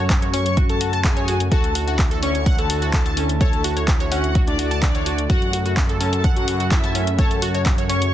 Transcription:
Already playing: F#2 C#3 A3 F#4
0.10 kick, clap, closed hi-hat
0.22 C#5, closed hi-hat
0.33 C#4 C#5 C#6, open hi-hat
0.46 closed hi-hat
0.57 F#4, kick, closed hi-hat
0.69 A4 A5, closed hi-hat
0.81 F#4, open hi-hat
0.93 A5, closed hi-hat
1.04 G#4 G#5, kick, clap, closed hi-hat
1.17 C#5, closed hi-hat
1.28 F#4, open hi-hat
1.40 closed hi-hat
1.52 D2 D3 E4 F#4 A4 A5, kick, closed hi-hat
1.64 closed hi-hat
1.75 F#4, open hi-hat
1.88 F#4, closed hi-hat
1.99 kick, clap, closed hi-hat
2.11 A4, closed hi-hat
2.22 C#4 C#5 C#6, open hi-hat
2.35 closed hi-hat
2.46 F#5, kick, closed hi-hat
2.58 A4 A5, closed hi-hat
2.70 F#4, open hi-hat
2.82 F#4, closed hi-hat
2.93 A4 A5, kick, clap, closed hi-hat
3.06 A5, closed hi-hat
3.17 C#4, open hi-hat
3.29 closed hi-hat
3.41 A4 C#5 A5, kick, closed hi-hat
3.53 closed hi-hat
3.64 F#4, open hi-hat
3.77 C#5, closed hi-hat
3.88 kick, clap, closed hi-hat
4.00 C#5, closed hi-hat
4.12 C#4 F#4 F#5, open hi-hat
4.24 closed hi-hat
4.35 F#4, kick, closed hi-hat
4.47 D4 D5, closed hi-hat
4.59 F#4, open hi-hat
4.71 A5, closed hi-hat
4.82 D4 D5, kick, clap, closed hi-hat
4.95 C#5, closed hi-hat
5.06 F#4, open hi-hat
5.18 closed hi-hat
5.30 F#2 C#3 F#4 F#5, kick, closed hi-hat
5.42 closed hi-hat
5.53 F#4, open hi-hat
5.66 F#4, closed hi-hat
5.77 kick, clap, closed hi-hat
5.89 A4, closed hi-hat
6.00 C#4 A4 A5, open hi-hat
6.13 closed hi-hat
6.24 F#5, kick, closed hi-hat
6.36 F#4 F#5, closed hi-hat
6.48 F#4, open hi-hat
6.60 F#4, closed hi-hat
6.71 E4 E5, kick, clap, closed hi-hat
6.84 A5, closed hi-hat
6.95 C#4, open hi-hat
7.07 closed hi-hat
7.19 A4 C#5 A5, kick, closed hi-hat
7.31 closed hi-hat
7.42 F#4, open hi-hat
7.55 C#5, closed hi-hat
7.66 kick, clap, closed hi-hat
7.78 C#5, closed hi-hat
7.89 C#4 C#5 C#6, open hi-hat
8.02 closed hi-hat

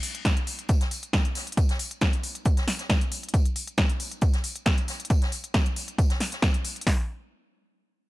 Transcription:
0.03 open hi-hat, tambourine
0.15 closed hi-hat
0.25 kick, snare, closed hi-hat, tambourine
0.37 closed hi-hat
0.47 open hi-hat, tambourine
0.59 closed hi-hat
0.69 kick, closed hi-hat, tambourine
0.81 snare, closed hi-hat
0.91 open hi-hat, tambourine
1.03 closed hi-hat
1.13 kick, snare, closed hi-hat, tambourine
1.25 closed hi-hat
1.35 snare, open hi-hat, tambourine
1.47 closed hi-hat
1.52 closed hi-hat
1.57 kick, closed hi-hat, tambourine
1.69 snare, closed hi-hat
1.79 open hi-hat, tambourine
1.91 closed hi-hat
2.01 kick, snare, closed hi-hat, tambourine
2.13 closed hi-hat
2.23 open hi-hat, tambourine
2.35 closed hi-hat
2.45 kick, closed hi-hat, tambourine
2.57 snare, closed hi-hat
2.68 snare, open hi-hat, tambourine
2.79 snare, closed hi-hat
2.89 kick, snare, closed hi-hat, tambourine
3.01 closed hi-hat
3.12 open hi-hat, tambourine
3.23 closed hi-hat
3.29 closed hi-hat
3.34 kick, closed hi-hat, tambourine
3.45 closed hi-hat
3.56 open hi-hat, tambourine
3.68 closed hi-hat
3.78 kick, snare, closed hi-hat, tambourine
3.89 closed hi-hat
4.00 open hi-hat, tambourine
4.12 closed hi-hat
4.21 kick, closed hi-hat, tambourine
4.33 snare, closed hi-hat
4.44 open hi-hat, tambourine
4.56 closed hi-hat
4.66 kick, snare, closed hi-hat, tambourine
4.78 closed hi-hat
4.88 snare, open hi-hat, tambourine
5.00 closed hi-hat
5.05 closed hi-hat
5.10 kick, closed hi-hat, tambourine
5.22 snare, closed hi-hat
5.32 open hi-hat, tambourine
5.44 closed hi-hat
5.54 kick, snare, closed hi-hat, tambourine
5.66 closed hi-hat
5.76 open hi-hat, tambourine
5.88 closed hi-hat
5.98 kick, closed hi-hat, tambourine
6.10 snare, closed hi-hat
6.20 snare, open hi-hat, tambourine
6.32 snare, closed hi-hat
6.42 kick, snare, closed hi-hat, tambourine
6.54 closed hi-hat
6.65 open hi-hat, tambourine
6.76 closed hi-hat
6.81 closed hi-hat
6.87 kick, snare, open hi-hat

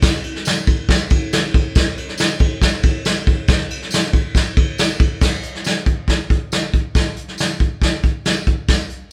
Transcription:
0.02 kick, snare, ride, tambourine
0.24 ride
0.36 snare
0.45 snare, ride, tambourine
0.67 kick, ride
0.89 kick, snare, ride, tambourine
1.10 kick, ride
1.33 snare, ride, tambourine
1.54 kick, ride
1.75 kick, snare, ride, tambourine
1.97 ride
2.09 snare
2.18 snare, ride, tambourine
2.39 kick, ride
2.62 kick, snare, ride, tambourine
2.83 kick, ride
3.05 snare, ride, tambourine
3.27 kick, ride
3.48 kick, snare, ride, tambourine
3.70 ride
3.82 snare
3.91 snare, ride, tambourine
4.13 kick, ride
4.35 kick, snare, ride, tambourine
4.57 kick, ride
4.78 snare, ride, tambourine
5.00 kick, ride
5.21 kick, snare, crash, tambourine
5.43 closed hi-hat
5.55 snare
5.64 snare, closed hi-hat, tambourine
5.86 kick, closed hi-hat
6.08 kick, snare, closed hi-hat, tambourine
6.30 kick, closed hi-hat
6.52 snare, closed hi-hat, tambourine
6.74 kick, closed hi-hat
6.95 kick, snare, closed hi-hat, tambourine
7.16 closed hi-hat
7.28 snare
7.38 snare, closed hi-hat, tambourine
7.60 kick, closed hi-hat
7.82 kick, snare, closed hi-hat, tambourine
8.03 kick, closed hi-hat
8.25 snare, closed hi-hat, tambourine
8.46 kick, closed hi-hat
8.68 kick, snare, closed hi-hat, tambourine
8.89 closed hi-hat

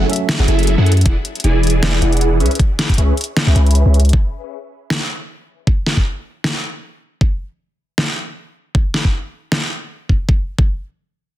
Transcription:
Already playing: F#3 A3 C#4 A4 E5
0.08 F#3 C#4 A4 E5, closed hi-hat
0.13 closed hi-hat
0.16 closed hi-hat
0.29 snare, closed hi-hat
0.39 F#1 F#3 E4 G#4 A4 F#5
0.48 F#1 F#3 E4 G#4 A4 E5, closed hi-hat
0.59 closed hi-hat
0.63 closed hi-hat
0.67 closed hi-hat
0.78 F#2 F#3 E4 G#4 A4 F#5
0.86 closed hi-hat
0.92 closed hi-hat
0.97 closed hi-hat
1.01 closed hi-hat
1.06 E1 E3 E4 G#4 D5 F#5, kick, closed hi-hat
1.25 closed hi-hat
1.35 closed hi-hat
1.40 closed hi-hat
1.44 E1 E3 E4 G#4 D5 G#5, closed hi-hat
1.63 closed hi-hat
1.67 closed hi-hat
1.70 closed hi-hat
1.83 snare, closed hi-hat
2.02 E1 E3 E4 G#4 D5 F#5, closed hi-hat
2.13 closed hi-hat
2.17 closed hi-hat
2.21 closed hi-hat
2.40 C#2 C#4 G#4 B4 E5 C#6, closed hi-hat
2.46 closed hi-hat
2.51 closed hi-hat
2.55 closed hi-hat
2.59 kick, closed hi-hat
2.79 snare, closed hi-hat
2.89 kick, closed hi-hat
2.94 closed hi-hat
2.98 C#2 C#4 G#4 B4 E5 C#6, closed hi-hat
3.17 closed hi-hat
3.21 closed hi-hat
3.24 closed hi-hat
3.37 snare, closed hi-hat
3.47 C#2 C#4 G#4 B4 E5 C#6
3.56 C#2 C#4 G#4 B4 E5 B5, closed hi-hat
3.67 closed hi-hat
3.71 closed hi-hat
3.75 closed hi-hat
3.85 C#2 C#4 G#4 B4 E5 C#6
3.94 closed hi-hat
4.00 closed hi-hat
4.05 closed hi-hat
4.09 closed hi-hat
4.13 kick
4.90 snare
5.67 kick
5.86 snare
5.97 kick
6.44 snare
7.21 kick
7.98 snare
8.75 kick
8.94 snare
9.05 kick
9.52 snare
10.09 kick
10.29 kick
10.59 kick

